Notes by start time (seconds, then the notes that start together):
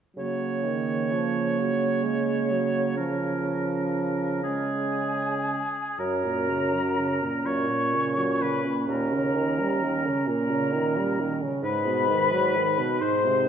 0.16 C#3 F#3 A#3 C#5
0.65 D#3
1.12 F3
1.59 F#3
2.05 G#3
2.51 F#3
2.96 F3 C#4 A#4
4.43 G#3 C#4 G#4 G#5
5.99 F#2 C#4 A#4 A#5
6.24 A#2
6.48 C#3
6.73 F#3
6.98 C#3
7.23 A#2
7.45 F#2 A#2 C#5 C#6
7.69 A#2
7.94 C#3
8.17 F#3
8.41 C#3 B4 B5
8.65 A#2
8.88 D#2 A#2 A#4 A#5
9.12 C#3
9.35 D#3
9.59 G3
9.83 D#3
10.06 C#3
10.28 A#2 A#4 A#5
10.50 C#3
10.73 D#3
10.96 G3
11.20 D#3
11.42 C#3
11.63 G#2 D#4 B4 B5
11.86 B2
12.09 D#3
12.32 F#3
12.56 D#3
12.78 B2
13.01 G#2 C5 C6
13.26 C3